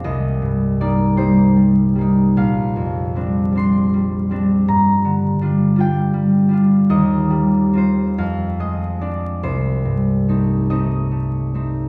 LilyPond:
<<
  \new Staff \with { instrumentName = "Harp" } { \time 6/8 \key c \dorian \tempo 4. = 50 <bes' ees'' g''>4 d''8 c''4. | f''4. c'''4. | bes''4. g''4. | ees''4 c''8 f''8 ees''8 d''8 |
c''4. ees''4. | }
  \new Staff \with { instrumentName = "Harp" } { \time 6/8 \key c \dorian <c, c'>8 g,8 <g bes ees'>8 <g bes ees'>8 g8 <g bes ees'>8 | bes,,8 f,8 <g c' d'>8 <g c' d'>8 g8 <g c' d'>8 | g,8 d8 <g d' f'>8 <g d' f'>8 g8 <g d' f'>8 | ees,8 g8 <c' f'>8 f,8 aes8 <c' d'>8 |
c,8 g,8 <a c' ees'>8 <a c' ees'>8 a8 <a c' ees'>8 | }
>>